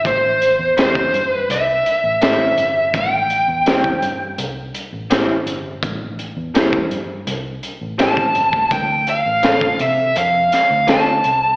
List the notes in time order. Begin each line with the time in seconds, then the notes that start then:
0.05 A1 C5, kick, closed hi-hat
0.42 closed hi-hat
0.59 E2
0.77 A2 G3 C4 E4 C5, snare, closed hi-hat
0.95 kick
1.14 G2, closed hi-hat
1.30 B4
1.50 C2 E5, closed hi-hat
1.86 closed hi-hat
2.04 A1
2.21 A2 G3 C4 E4 E5, snare, closed hi-hat
2.58 G1, closed hi-hat
2.94 A1 G5, kick, closed hi-hat
3.30 closed hi-hat
3.48 E2
3.66 A2 G3 C4 E4, snare, closed hi-hat
3.84 kick
4.02 G2, closed hi-hat
4.38 C2, closed hi-hat
4.74 closed hi-hat
4.92 A1
5.10 A2 G3 C4 E4, snare, closed hi-hat
5.46 G1, closed hi-hat
5.83 A1, kick, closed hi-hat
6.19 closed hi-hat
6.37 E2
6.54 A2 G3 C4 E4, snare, closed hi-hat
6.73 kick
6.91 G2, closed hi-hat
7.27 C2, closed hi-hat
7.63 closed hi-hat
7.81 A1
7.98 A2 G3 C4 E4 A5, snare, closed hi-hat
8.17 kick
8.35 G1, closed hi-hat
8.53 kick
8.71 D2 G5, kick, closed hi-hat
9.07 F5, closed hi-hat
9.26 A1
9.43 D3 C4 F4 A4, snare, closed hi-hat
9.61 kick
9.79 C3 E5, closed hi-hat
10.16 F2 F5, closed hi-hat
10.52 F5, snare, closed hi-hat
10.71 D2
10.87 D3 C4 F4 A4, snare, closed hi-hat
10.91 A5
11.24 C2, closed hi-hat